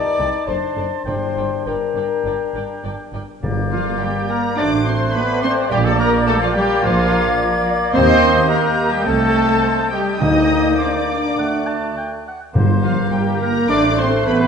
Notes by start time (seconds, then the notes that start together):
Already playing: D#4 D5 A5 D6
0.17 C2 C3 D#4 A4 G5 A5
0.47 F#1 F#2 D4 A4 C5 D5 A5 C6
0.76 F#1 F#2 D4 A4 D5 A5
1.05 G1 G2 D4 A#4 C5 D5 G5 C6
1.36 G1 G2 D4 A#4 D5 G5
1.65 G1 G2 D4 A#4 D5 G5 A#5
1.95 G1 G2 D4 A#4 D5 G5
2.24 G1 G2 D4 A#4 D5 G5
2.53 G1 G2 D4 A#4 D5 G5
2.83 G1 G2 D4 A#4 D5 G5
3.13 G1 G2 D4 A#4 D5 G5
3.43 G1 G2 A#3 D5 G6
3.71 F3 F4 F5
4.00 G3 G4 G5
4.28 A#3 A#4 A#5
4.56 A1 A3 D4 F#4 C5 D5 D6 F#6
4.85 C4 C5 C6
5.13 B3 B4 D5 B5
5.41 C4 C5 C6
5.69 A#1 G3 A#3 G4 D5 G5 G6
5.84 A3 A4 A5
5.96 A#3 A#4
6.00 A#4 A#5
6.25 A3 A4 A5
6.39 F3 F4 F5
6.53 G3 G4 G5
6.82 A#1 F3 F4 C5 F5 G#6
7.11 A#4
7.38 D5
7.93 D#2 C4 C5 D#5 C6 G6
8.49 A#3 G4 A#4 A#5
8.58 C6
8.65 A#5
8.90 G3 G4 G5
9.05 C2 A3 C4 A4 A5
9.63 C5
9.91 G3 G4 D#5 G5
10.20 D2 D3 A#3 D#4 D5 D#5 G5 D#6
10.79 D4 C5 D5 D6
11.09 D5
11.38 D2 A3 F#5 F#6
11.67 A5
11.98 G5
12.28 F#5
12.54 G1 G2 A#3 C5 G6
12.82 F3 F4 F5
13.11 G1 G3 G4 A#4 G5
13.40 A#3 A#4 A#5
13.69 A1 A3 D4 A4 C5 D5 D6 F#6
13.98 C4 C5 C6
14.26 A1 B3 B4 B5